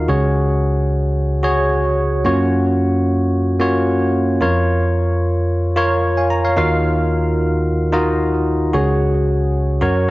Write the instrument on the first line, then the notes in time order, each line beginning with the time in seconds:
tine electric piano
Already playing: D#4 F4 F#4 A#4 F5
0.08 C#2 C#3 F#4 G#4 C#5
1.43 F#4 G#4 C#5
2.25 F#2 A#3 C#4 F4 F#4 C#5
3.60 A#3 C#4 F4 F#4 C#5
4.41 F2 F4 A#4 C#5
5.76 F4 A#4 C#5
6.17 F5 G#5
6.30 A#5
6.45 C#5 F5
6.57 D#2 D#3 D#4 F4 F#4 A#4 F5
7.92 D#4 F4 F#4 A#4 D#5
8.73 C#2 C#3 F#4 G#4 C#5
9.81 F#2 F#4 A#4 C#5